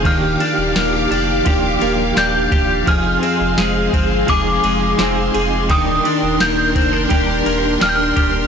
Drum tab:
RD |xxxxxxxx|xxxxxxxx|xxxxxxxx|
TB |--x---x-|--x---x-|--x---x-|
SD |--o---o-|--o---o-|--o---o-|
BD |o---o--o|o--oo---|o--oo--o|